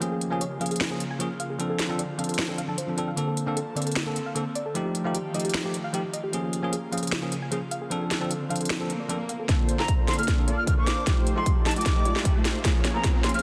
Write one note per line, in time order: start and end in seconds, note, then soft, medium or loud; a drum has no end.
0.00 1.58 C#3 medium
0.00 0.29 F3 medium
0.00 0.29 A#3 medium
0.00 1.58 A#3 medium
0.00 0.29 C#4 medium
0.00 3.14 F4 medium
0.00 0.29 G#4 loud
0.00 closed hi-hat medium
0.12 0.20 G#4 medium
0.21 closed hi-hat medium
0.30 0.42 F3 medium
0.30 0.42 A#3 medium
0.30 0.43 C#4 medium
0.30 0.43 G#4 loud
0.30 0.37 G#5 loud
0.41 0.47 C#5 medium
0.41 closed hi-hat medium
0.60 0.88 F3 medium
0.60 0.88 A#3 medium
0.60 0.89 C#4 medium
0.60 0.89 G#4 medium
0.60 0.64 F5 loud
0.60 closed hi-hat soft
0.66 closed hi-hat medium
0.71 0.79 G#4 medium
0.71 closed hi-hat soft
0.76 closed hi-hat medium
0.81 finger snap medium
0.81 snare loud
0.90 1.01 F3 medium
0.90 1.02 A#3 medium
0.90 1.02 C#4 medium
0.90 0.99 G#4 medium
0.90 1.02 G#4 medium
1.00 closed hi-hat medium
1.11 1.16 G#5 loud
1.19 1.27 F3 medium
1.19 1.27 A#3 medium
1.19 1.28 C#4 medium
1.19 1.28 G#4 loud
1.19 1.26 C#5 medium
1.19 closed hi-hat medium
1.40 1.43 F5 loud
1.40 closed hi-hat medium
1.50 1.58 G#4 medium
1.58 4.72 D3 medium
1.58 1.87 F3 medium
1.58 1.87 C4 medium
1.58 3.16 C4 medium
1.58 1.87 D4 medium
1.58 1.88 A4 loud
1.58 closed hi-hat medium
1.70 1.78 A4 medium
1.79 snare medium
1.79 closed hi-hat medium
1.89 2.00 F3 medium
1.89 2.00 C4 medium
1.89 2.01 D4 medium
1.89 2.01 A4 loud
1.89 1.95 A5 loud
1.99 2.05 D5 medium
1.99 closed hi-hat medium
2.18 2.46 F3 medium
2.18 2.46 C4 medium
2.18 2.46 D4 medium
2.18 2.47 A4 medium
2.18 2.22 F5 loud
2.18 closed hi-hat soft
2.24 closed hi-hat medium
2.29 2.37 A4 medium
2.29 closed hi-hat soft
2.34 closed hi-hat medium
2.39 finger snap medium
2.39 snare loud
2.48 2.59 F3 medium
2.48 2.60 C4 medium
2.48 2.60 D4 medium
2.48 2.57 A4 medium
2.48 2.60 A4 medium
2.58 2.64 F5 loud
2.58 closed hi-hat medium
2.67 2.75 F3 medium
2.67 2.75 C4 medium
2.67 2.75 D4 medium
2.67 2.76 A4 medium
2.67 2.74 A5 medium
2.78 2.87 C5 medium
2.78 closed hi-hat medium
2.87 2.95 F3 medium
2.87 2.95 C4 medium
2.87 2.96 D4 medium
2.87 2.96 A4 medium
2.97 3.09 F3 medium
2.97 3.09 C4 medium
2.97 3.10 D4 medium
2.97 3.06 A4 medium
2.97 3.10 A4 medium
2.97 closed hi-hat medium
3.08 3.16 F5 medium
3.16 3.44 D3 medium
3.16 3.45 A#3 medium
3.16 4.74 A#3 medium
3.16 4.74 C4 medium
3.16 3.45 C4 medium
3.16 4.74 A4 medium
3.16 3.45 A4 loud
3.16 closed hi-hat medium
3.27 3.36 A4 medium
3.37 closed hi-hat medium
3.46 3.58 D3 medium
3.46 3.58 A#3 medium
3.46 3.58 C4 medium
3.46 3.59 A4 loud
3.46 3.53 F5 loud
3.57 3.63 A4 medium
3.57 closed hi-hat medium
3.75 4.04 D3 medium
3.75 4.04 A#3 medium
3.75 4.04 C4 medium
3.75 4.04 A4 medium
3.75 3.80 D5 loud
3.75 closed hi-hat soft
3.82 closed hi-hat medium
3.87 3.95 A4 medium
3.87 closed hi-hat soft
3.92 closed hi-hat medium
3.96 finger snap medium
3.96 snare loud
3.96 closed hi-hat medium
4.06 4.17 D3 medium
4.06 4.17 A#3 medium
4.06 4.18 C4 medium
4.06 4.15 A4 medium
4.06 4.18 A4 medium
4.16 closed hi-hat medium
4.26 4.32 F5 loud
4.35 4.43 D3 medium
4.35 4.43 A#3 medium
4.35 4.43 C4 medium
4.35 4.42 A4 medium
4.35 4.44 A4 loud
4.35 closed hi-hat medium
4.55 4.59 D5 loud
4.55 closed hi-hat medium
4.66 4.74 A4 medium
4.74 6.32 D#3 medium
4.74 5.02 F3 medium
4.74 5.03 A3 medium
4.74 6.32 A3 medium
4.74 5.03 D#4 medium
4.74 9.45 F4 medium
4.74 6.32 G4 medium
4.74 5.03 G4 loud
4.74 closed hi-hat medium
4.85 4.94 G4 medium
4.95 closed hi-hat medium
5.04 5.16 F3 loud
5.04 5.16 A3 medium
5.04 5.17 D#4 medium
5.04 5.17 G4 loud
5.04 5.11 F5 loud
5.15 5.21 G4 medium
5.15 closed hi-hat medium
5.34 5.62 F3 medium
5.34 5.62 A3 medium
5.34 5.62 D#4 medium
5.34 5.63 G4 medium
5.34 5.38 D#5 loud
5.34 closed hi-hat soft
5.40 closed hi-hat medium
5.45 5.53 G4 medium
5.45 closed hi-hat soft
5.49 closed hi-hat medium
5.54 finger snap medium
5.54 snare loud
5.63 5.75 F3 medium
5.63 5.75 A3 medium
5.63 5.76 D#4 medium
5.63 5.73 G4 medium
5.63 5.76 G4 medium
5.74 closed hi-hat medium
5.84 5.90 F5 loud
5.93 6.01 F3 medium
5.93 6.01 A3 medium
5.93 6.01 D#4 medium
5.93 6.00 G4 medium
5.93 6.02 G4 loud
5.93 closed hi-hat medium
6.13 6.17 D#5 loud
6.13 closed hi-hat medium
6.24 6.32 G4 medium
6.32 7.89 C#3 medium
6.32 6.60 F3 medium
6.32 6.61 A#3 medium
6.32 7.89 A#3 medium
6.32 6.61 C#4 medium
6.32 6.61 G#4 loud
6.32 closed hi-hat medium
6.43 6.52 G#4 medium
6.53 closed hi-hat medium
6.62 6.74 F3 loud
6.62 6.74 A#3 medium
6.62 6.74 C#4 medium
6.62 6.75 G#4 loud
6.62 6.69 G#5 loud
6.73 6.79 G#4 medium
6.73 closed hi-hat medium
6.91 7.19 F3 medium
6.91 7.20 A#3 medium
6.91 7.20 C#4 medium
6.91 7.20 G#4 medium
6.91 6.96 F5 loud
6.91 closed hi-hat soft
6.98 closed hi-hat medium
7.03 7.11 G#4 medium
7.03 closed hi-hat medium
7.07 closed hi-hat medium
7.12 finger snap medium
7.12 snare loud
7.21 7.33 F3 medium
7.21 7.33 A#3 medium
7.21 7.34 C#4 medium
7.21 7.31 G#4 medium
7.21 7.34 G#4 medium
7.32 closed hi-hat medium
7.42 7.48 G#5 loud
7.51 7.59 F3 medium
7.51 7.59 A#3 medium
7.51 7.59 C#4 medium
7.51 7.57 G#4 medium
7.51 7.60 G#4 loud
7.51 closed hi-hat medium
7.71 7.75 F5 loud
7.71 closed hi-hat medium
7.82 7.90 G#4 medium
7.90 9.47 D3 medium
7.90 8.18 F3 medium
7.90 8.18 C4 medium
7.90 9.47 C4 medium
7.90 8.19 D4 medium
7.90 8.19 A4 loud
7.90 closed hi-hat medium
8.01 8.09 A4 medium
8.11 snare medium
8.11 closed hi-hat medium
8.20 8.32 F3 medium
8.20 8.32 C4 medium
8.20 8.32 D4 medium
8.20 8.33 A4 loud
8.20 8.26 A5 loud
8.30 8.36 A4 medium
8.30 closed hi-hat medium
8.49 8.77 F3 medium
8.49 8.78 C4 medium
8.49 8.78 D4 medium
8.49 8.78 A4 medium
8.49 8.54 F5 loud
8.49 closed hi-hat soft
8.56 closed hi-hat medium
8.60 8.69 A4 medium
8.60 closed hi-hat medium
8.65 closed hi-hat medium
8.70 finger snap loud
8.70 snare loud
8.70 swell medium
8.79 8.91 F3 medium
8.79 8.91 C4 medium
8.79 8.92 D4 medium
8.79 8.88 A4 medium
8.79 8.92 A4 medium
8.90 closed hi-hat medium
9.00 9.05 D5 medium
9.08 9.16 F3 medium
9.08 9.17 C4 medium
9.08 9.17 D4 medium
9.08 9.17 A4 loud
9.08 9.15 D5 loud
9.08 closed hi-hat medium
9.29 9.38 F5 loud
9.29 closed hi-hat medium
9.39 9.43 A4 medium
9.48 10.27 A#1 loud
9.48 9.76 D3 medium
9.48 9.76 A#3 medium
9.48 9.77 C4 medium
9.48 9.76 D4 medium
9.48 9.76 F4 medium
9.48 9.76 A4 medium
9.48 11.05 A4 medium
9.48 9.77 A4 loud
9.48 9.76 C5 loud
9.48 11.05 D5 medium
9.48 11.05 C6 medium
9.48 kick loud
9.48 snare soft
9.48 closed hi-hat medium
9.48 riser medium
9.69 closed hi-hat medium
9.78 9.90 D3 medium
9.78 9.90 A#3 medium
9.78 10.16 A#3 medium
9.78 9.90 C4 medium
9.78 10.16 D4 medium
9.78 10.16 F4 medium
9.78 10.16 A4 medium
9.78 9.91 A4 loud
9.78 10.16 C5 loud
9.78 9.92 A#5 medium
9.78 snare soft
9.88 kick loud
9.88 closed hi-hat medium
10.07 10.35 D3 medium
10.07 10.35 A#3 medium
10.07 10.36 C4 medium
10.07 10.36 A4 loud
10.07 10.16 C6 medium
10.07 snare soft
10.07 closed hi-hat soft
10.13 closed hi-hat medium
10.18 10.45 A#3 medium
10.18 10.45 D4 medium
10.18 10.45 F4 medium
10.18 10.45 A4 medium
10.18 10.45 F5 loud
10.18 10.31 F6 medium
10.18 closed hi-hat medium
10.23 closed hi-hat medium
10.28 10.49 A#1 loud
10.28 kick loud
10.28 snare medium
10.28 closed hi-hat medium
10.37 10.49 D3 medium
10.37 10.49 A#3 medium
10.37 10.49 C4 medium
10.37 10.50 A4 medium
10.47 10.66 F1 medium
10.47 10.75 A#3 loud
10.47 10.75 D4 medium
10.47 10.75 F4 medium
10.47 10.75 A4 medium
10.47 10.75 D5 loud
10.47 closed hi-hat medium
10.58 10.64 F6 medium
10.66 10.74 D3 medium
10.66 10.75 A#3 medium
10.66 10.75 C4 medium
10.66 10.75 A4 loud
10.66 10.74 F6 medium
10.66 kick loud
10.66 closed hi-hat medium
10.77 11.04 A#3 medium
10.77 11.04 D4 medium
10.77 11.04 F4 medium
10.77 11.04 A4 medium
10.77 11.04 C5 loud
10.77 11.11 D6 medium
10.87 snare medium
10.87 closed hi-hat medium
11.06 11.85 F1 loud
11.06 11.34 F3 medium
11.06 11.34 A3 medium
11.06 11.34 D#4 medium
11.06 11.35 D#4 medium
11.06 11.34 F4 medium
11.06 11.34 G4 medium
11.06 12.63 G4 medium
11.06 11.35 G4 loud
11.06 11.34 C5 loud
11.06 12.63 D#5 medium
11.06 12.63 A5 medium
11.06 kick loud
11.06 snare medium
11.06 closed hi-hat medium
11.27 closed hi-hat medium
11.36 11.47 F3 medium
11.36 11.48 A3 medium
11.36 11.74 A3 medium
11.36 11.74 D#4 medium
11.36 11.48 D#4 medium
11.36 11.74 F4 medium
11.36 11.74 G4 medium
11.36 11.48 G4 loud
11.36 11.74 A4 loud
11.36 11.50 C6 medium
11.46 kick loud
11.46 closed hi-hat medium
11.65 11.93 F3 medium
11.65 11.93 A3 medium
11.65 11.94 D#4 medium
11.65 11.94 G4 loud
11.65 11.74 A5 medium
11.65 snare medium
11.65 closed hi-hat soft
11.71 closed hi-hat medium
11.76 12.03 A3 loud
11.76 12.03 D#4 medium
11.76 12.03 F4 medium
11.76 12.03 G4 medium
11.76 12.03 D#5 loud
11.76 12.16 D6 medium
11.76 closed hi-hat medium
11.81 closed hi-hat medium
11.86 kick loud
11.86 snare medium
11.86 closed hi-hat medium
11.95 12.07 F3 medium
11.95 12.07 A3 medium
11.95 12.07 D#4 medium
11.95 12.08 G4 medium
12.05 12.33 A3 loud
12.05 12.33 D#4 medium
12.05 12.33 F4 medium
12.05 12.33 G4 medium
12.05 12.33 D5 loud
12.05 closed hi-hat medium
12.16 snare medium
12.24 12.32 F3 medium
12.24 12.32 A3 medium
12.24 12.33 D#4 medium
12.24 12.33 G4 loud
12.24 kick loud
12.24 closed hi-hat medium
12.35 12.62 A3 medium
12.35 12.62 D#4 medium
12.35 12.62 F4 medium
12.35 12.62 G4 medium
12.35 12.62 C5 loud
12.45 12.63 D#1 medium
12.45 snare medium
12.45 closed hi-hat medium
12.64 13.42 C#2 loud
12.64 12.92 F3 medium
12.64 12.92 A#3 medium
12.64 12.92 C#4 medium
12.64 12.92 F4 medium
12.64 13.42 F4 medium
12.64 12.92 G#4 medium
12.64 12.93 G#4 medium
12.64 12.92 C#5 loud
12.64 13.42 C#5 medium
12.64 13.42 A#5 medium
12.64 kick loud
12.64 snare medium
12.64 closed hi-hat medium
12.85 snare medium
12.85 closed hi-hat medium
12.94 13.05 F3 medium
12.94 13.06 A#3 medium
12.94 13.32 A#3 medium
12.94 13.32 C#4 medium
12.94 13.06 C#4 medium
12.94 13.32 F4 medium
12.94 13.32 G#4 medium
12.94 13.06 G#4 loud
12.94 13.32 A#4 loud
12.94 13.07 A#5 medium
13.04 kick loud
13.04 snare medium
13.04 closed hi-hat medium
13.23 13.41 F3 medium
13.23 13.42 A#3 medium
13.23 13.42 C#4 medium
13.23 13.42 G#4 medium
13.23 13.32 C6 medium
13.23 snare medium
13.23 closed hi-hat soft
13.29 closed hi-hat medium
13.34 13.42 A#3 medium
13.34 13.42 C#4 medium
13.34 13.42 F4 medium
13.34 13.42 G#4 medium
13.34 13.42 F5 loud
13.34 13.42 F6 medium
13.34 closed hi-hat soft
13.39 closed hi-hat medium